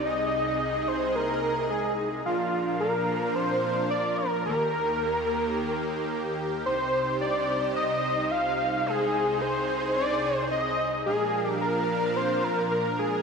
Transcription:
Already playing: C2 C3 D#4
0.05 G#4 D#5
0.88 C5
1.15 A#4
1.70 G#4
2.25 A#2 F3 D4 F4 A#4 F5
2.80 A#4
3.36 C5
3.91 D5
4.18 A#4
4.46 D#2 D#3 A#3 G4 A#4
6.66 C2 C3 D#4 C5
7.21 D5
7.76 D#5
8.31 F5
8.86 C3 G#4 C5
9.41 C5
9.96 D5
10.36 C5
10.51 D#5
11.06 A#2 F3 D4 G#4 A#4 F5
11.43 G4
11.61 A#4
12.16 C5
12.44 A#4
12.71 A#4
12.99 G#4

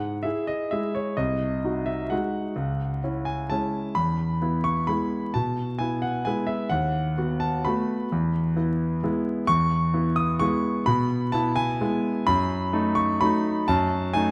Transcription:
Already playing: G#2 F#5
0.23 E4 G#4 E5
0.47 D#5
0.71 G#3 E4 G#4 E5
0.95 C#5
1.17 C2 D#5
1.64 D#4 F#4
1.86 E5
2.10 G#3 D#4 F#4 F#5
2.56 C#2
3.04 C#4 E4
3.25 G#5
3.50 G#3 C#4 E4 A5
3.95 E2 B5
4.42 B3 E4
4.64 C#6
4.87 G#3 B3 E4 B5
5.34 B2 A5
5.78 B3 E4 G#5
6.02 F#5
6.25 G#3 B3 E4 G#5
6.47 E5
6.69 D#2 F#5
7.18 B3 F#4
7.40 A5
7.65 A3 B3 F#4 B5
8.12 E2
8.56 B3 E4
9.03 G#3 B3 E4
9.47 E2 C#6
9.94 B3 E4
10.16 D#6
10.39 G#3 B3 E4 C#6
10.86 B2 B5
11.32 B3 E4 A5
11.56 G#5
11.81 G#3 B3 E4
12.27 F#2 B5
12.73 A3 D#4
12.95 C#6
13.21 F#3 A3 D#4 B5
13.68 F#2 A5
14.13 A3 D#4 G#5

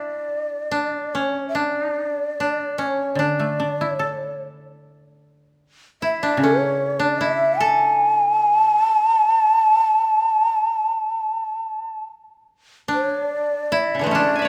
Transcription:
Already playing: D4 E4 D5
0.71 D4
1.14 C#4 C#5
1.48 E5
1.55 D4 D5
2.40 D4
2.78 C#4 D5
2.86 C#5
3.15 D3 D4
3.22 D5
3.39 A3
3.60 D4
3.81 E4
3.92 C#5
3.99 A4
6.02 E4 E5
6.22 D4 D5
6.37 C#3
6.43 C#4 C#5
6.99 D4 D5
7.19 E4 E5
7.60 A4 G#5
8.66 A5
12.88 D4
12.94 C#5
13.23 D5
13.72 E4
13.95 C#3
13.99 D3 E3
14.04 G#3 A3
14.11 C#4 D4
14.17 D5
14.36 E5 G#5
14.42 C#5 D5

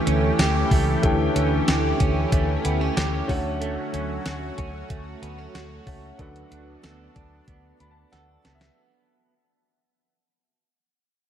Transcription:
Already playing: D3 E3 A3 C#4 E4 G4 A4 C#5 G5
0.07 D2 C#4, closed hi-hat
0.39 D2 G4, snare, closed hi-hat, tambourine
0.71 C#2 A3, kick, open hi-hat
1.02 D2 D3 E3 E4 G4 A4 C#5 G5, kick, closed hi-hat
1.36 D2 C#4, closed hi-hat
1.68 D2 G4, snare, closed hi-hat, tambourine
2.00 D2 C#4, kick, closed hi-hat
2.32 D2 A3, kick, closed hi-hat
2.65 D2 B3, closed hi-hat
2.81 C#4
2.97 D2 G4, snare, closed hi-hat, tambourine
3.28 D2 D3 F#3 A3 C#4 F#4 A4 C#5 F#5, kick, open hi-hat
3.61 A3, closed hi-hat
3.93 D2 C#4, closed hi-hat
4.26 D2 F#4, snare, closed hi-hat, tambourine
4.58 D2 C#4, kick, closed hi-hat
4.90 D2 A3, kick, closed hi-hat
5.22 D2 B3, closed hi-hat
5.38 C#4
5.55 D2 F#4, snare, closed hi-hat, tambourine
5.86 C#2 A3 C#4 F#4 A4 C#5 F#5, kick, open hi-hat
6.18 D2 D3 F#3 B3 D4 F#4 A4 B4 F#5, kick, closed hi-hat
6.36 closed hi-hat
6.51 D2 D4, closed hi-hat
6.83 D2 A4, snare, closed hi-hat, tambourine
7.16 D2 D4, kick, closed hi-hat
7.48 D2 B3, kick, closed hi-hat
7.80 D2 D4 B5, closed hi-hat
7.91 A5
8.12 D2 A4 F#5, snare, closed hi-hat
8.45 C#2 B3, snare, closed hi-hat
8.55 E5
8.61 snare, closed hi-hat

